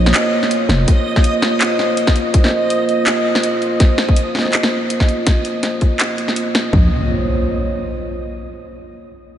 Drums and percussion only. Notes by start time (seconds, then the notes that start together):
0.06 snare
0.14 clap, closed hi-hat
0.43 snare
0.51 closed hi-hat
0.69 snare, closed hi-hat
0.88 kick, closed hi-hat
1.16 kick, snare
1.24 closed hi-hat
1.42 snare
1.61 clap, closed hi-hat
1.79 snare
1.97 closed hi-hat
2.07 kick, snare
2.16 closed hi-hat
2.34 kick, closed hi-hat
2.44 snare
2.46 snare
2.48 snare
2.50 snare
2.70 closed hi-hat
2.89 closed hi-hat
3.07 clap, snare, closed hi-hat
3.35 snare
3.43 closed hi-hat
3.62 closed hi-hat
3.80 kick, snare, closed hi-hat
3.98 snare
4.08 kick
4.17 closed hi-hat
4.35 snare
4.38 snare
4.41 snare
4.45 snare
4.47 snare
4.51 clap, snare, closed hi-hat
4.63 snare
4.90 closed hi-hat
5.00 kick, snare
5.08 closed hi-hat
5.27 kick, snare, closed hi-hat
5.45 closed hi-hat
5.63 snare, closed hi-hat
5.81 kick, closed hi-hat
6.00 clap, closed hi-hat
6.18 closed hi-hat
6.28 snare
6.36 closed hi-hat
6.55 snare, closed hi-hat
6.73 kick, floor tom